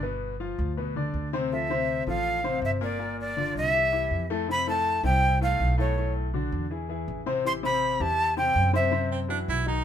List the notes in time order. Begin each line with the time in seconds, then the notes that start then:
Already playing: G1
0.02 B2 B3 B4
0.40 F3 F4 F5
0.59 D2
0.77 B2 B3 B4
0.96 D3 D4 D5
1.14 D2
1.33 C3 C4 C5
1.52 F3 F4 A4 E5
1.70 C3 C4 C5
2.07 A1 F3 F4 A4 F5
2.44 C3 C4 C5
2.62 G1 E5
2.81 A#2 A#3 A#4 D5
2.99 A#2 A#3 A#4
3.21 D5
3.37 D3 D4 F4
3.55 C2 E5
3.74 E3 E4 G4
3.92 E3 E4 G4
4.11 F2
4.30 A2 A3 A4
4.48 C3 C4 E4 B5
4.67 A2 A3 A4 A5
5.03 C2 C3 C4 E4 G5
5.41 A2 A3 A4 F5
5.60 B1
5.78 A2 A3 A4 C#5
5.97 A2 A3 A4
6.34 D3 D4 F#4
6.52 E2
6.70 E3 E4 G#4
6.89 E3 E4 G#4
7.08 A1
7.26 C3 C4 C5
7.45 E3 E4 G4 C6
7.63 C3 C4 C5 B5
8.00 E2 E3 E4 G4 A5
8.37 C3 C4 C5 G5
8.55 F#2
8.73 C3 C4 C5 E5
8.91 C3 C4 C5
9.12 C4
9.28 E3 D4 E4 F#4
9.48 B1 E4
9.66 D#3 D#4 F#4